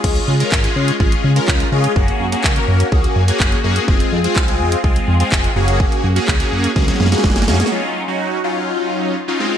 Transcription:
<<
  \new Staff \with { instrumentName = "Analog polysynth" } { \time 4/4 \key ees \dorian \tempo 4 = 125 <aes des' f' aes'>8. <aes des' f' bes'>8 <aes des' f' aes'>8. <aes des' f' aes'>8. <aes des' f' bes'>8. <aes des' f' aes'>8 | <bes des' ges' aes'>8. <bes des' ges' aes'>8 <bes des' ges' bes'>8. <bes des' ges' aes'>8. <bes des' ges' aes'>8. <bes des' ges' aes'>8 | <aes c' f' aes'>8. <aes c' f' aes'>8 <aes c' f' aes'>8. <aes c' f' aes'>8. <aes c' f' aes'>8. <bes des' ges' aes'>8~ | <bes des' ges' aes'>8 r16 <bes des' ges' aes'>8 <bes des' ges' aes'>8. <bes des' ges' aes'>8. <bes des' ges' aes'>8. <bes des' ges' aes'>8 |
<ges des' ees' f'>8. <ges des' ees' ges'>8. <ges des' ees' f'>4. r16 <ges des' ees' f'>16 <aes c' ees' f'>8 | }
  \new Staff \with { instrumentName = "Analog synth bass" } { \clef bass \time 4/4 \key ees \dorian des,8 des8 aes,,8 des8 aes,,8 des8 des,8 des8 | ges,,8 ges,8 des,8 ges,8 des,8 ges,8 ges,,8 ges,8 | f,,8 f,8 c,8 f,8 c,8 f,8 f,,8 ges,,8~ | ges,,8 ges,8 des,8 ges,8 des,8 ges,8 ges,,8 ges,8 |
r1 | }
  \new DrumStaff \with { instrumentName = "Drums" } \drummode { \time 4/4 <cymc bd>16 hh8 hh16 <hc bd>16 hh8 hh16 bd16 hh8 hh16 <hc bd>16 hh8 hh16 | bd16 hh8 hh16 <hc bd>16 hh8 hh16 bd16 hh8 hh16 <hc bd>16 hh8 hh16 | bd16 hh8 hh16 <hc bd>16 hh8 hh16 bd16 hh8 hh16 <hc bd>16 hh8 hh16 | bd16 hh8 hh16 <hc bd>16 hh8 hh16 <bd sn>32 sn32 <hh sn>32 sn32 sn32 sn32 <hh sn>32 sn32 <bd sn>32 sn32 <hh sn>32 sn32 sn32 sn32 <hh sn>32 sn32 |
r4 r4 r4 r4 | }
>>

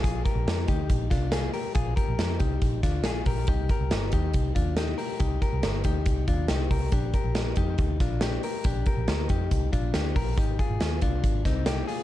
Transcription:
<<
  \new Staff \with { instrumentName = "Clean electric guitar" } { \time 4/4 \key bes \mixolydian \tempo 4 = 139 <f' aes'>8 <g' bes'>4 <ees' g'>4 <d' f'>8 <f' aes'>8 <g' bes'>8 | <f' aes'>8 <g' bes'>4 <ees' g'>4 <d' f'>8 <f' aes'>8 <g' bes'>8 | <ees' g'>8 <g' bes'>4 <ees' g'>4 <d' f'>8 <ees' g'>8 <g' bes'>8 | <ees' g'>8 <g' bes'>4 <ees' g'>4 <d' f'>8 <ees' g'>8 <g' bes'>8 |
<d' g'>8 <g' bes'>4 <ees' g'>4 <d' f'>8 <d' g'>8 <g' bes'>8 | <d' g'>8 <g' bes'>4 <ees' g'>4 <d' f'>8 <d' g'>8 <g' bes'>8 | <ees' g'>8 <f' aes'>4 <d' f'>4 <c' ees'>8 <ees' g'>8 <f' aes'>8 | }
  \new Staff \with { instrumentName = "Picked electric bass" } { \clef bass \time 4/4 \key bes \mixolydian bes,,8 r16 bes,,16 f,8 d,8 bes,,8 c,4 r8 | bes,,8 r16 bes,,16 f,8 c,8 bes,,8 d,8 bes,,8 bes,,8 | c,8 r16 c,16 g,,8 ees,8 c,8 ees,4 r8 | c,8 r16 c,16 g,,8 d,8 c,8 ees,8 c,8 c,8 |
bes,,8 r16 bes,,8. f,8 d,8 bes,,4 r8 | bes,,8 r16 bes,,16 d,8 f,8 c,8 bes,,8 d,8 bes,,8 | r8. aes,,16 ees,8 c,8 aes,,8 c,4 r8 | }
  \new DrumStaff \with { instrumentName = "Drums" } \drummode { \time 4/4 <hh bd>8 <hh bd>8 <hh sn>8 <hh bd>8 <hh bd>8 <hh bd sn>8 <hh sn>8 hho8 | <hh bd>8 <hh bd>8 <hh sn>8 <hh bd>8 <hh bd>8 <hh bd sn>8 <hh sn>8 <hho bd>8 | <hh bd>8 <hh bd>8 <hh sn>8 <hh bd>8 <hh bd>8 <hh bd>8 <hh sn>8 hho8 | <hh bd>8 <hh bd>8 <hh sn>8 <hh bd>8 <hh bd>8 <hh bd>8 <hh sn>8 <hho bd>8 |
<hh bd>8 <hh bd>8 <hh sn>8 <hh bd>8 <hh bd>8 <hh bd sn>8 <hh sn>8 hho8 | <hh bd>8 <hh bd>8 <hh sn>8 <hh bd>8 <hh bd>8 <hh bd>8 <hh sn>8 <hho bd>8 | <hh bd>8 <hh bd>8 <hh sn>8 <hh bd>8 <hh bd>8 <hh bd sn>8 <hh sn>8 hho8 | }
>>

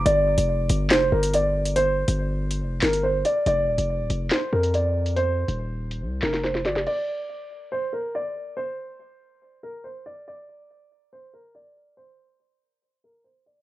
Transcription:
<<
  \new Staff \with { instrumentName = "Grand piano" } { \time 4/4 \key g \minor \tempo 4 = 141 d''2 c''8 bes'8 d''4 | c''2~ c''8 bes'8 c''8 d''8 | d''2 c''8 bes'8 d''4 | c''2~ c''8 bes'8 c''8 d''8 |
d''2 c''8 bes'8 d''4 | c''2~ c''8 bes'8 c''8 d''8 | d''2 c''8 bes'8 d''4 | c''2~ c''8 bes'8 c''8 d''8 | }
  \new Staff \with { instrumentName = "808-style bass" } { \clef bass \time 4/4 \key g \minor g,,8. f,,8. g,,8 f,,8 g,,4.~ | g,,8. g,,4~ g,,16 f,,8 g,,4 r8 | f,,8 ees,,16 f,,8 ees,,16 f,,8 r8 f,4.~ | f,8. ees,,4~ ees,,16 c,8 f,,4 g,,16 f,,16 |
r1 | r1 | r1 | r1 | }
  \new DrumStaff \with { instrumentName = "Drums" } \drummode { \time 4/4 hh8. hh16 r8 hh8 <hc sn>8. hh16 hh8. hh16 | hh8. hh16 r8. hh16 r8 <hc hh sn>16 hh16 r8 hh8 | hh8. hh16 r8 hh8 <hc sn>8. hh16 hh8. hh16 | hh8. hh16 r8. hh16 r8 <hc hh sn>16 <hh sn>16 sn16 sn16 <hh sn>16 sn16 |
cymc4 r4 r4 r4 | r4 r4 r4 r4 | r4 r4 r4 r4 | r4 r4 r4 r4 | }
>>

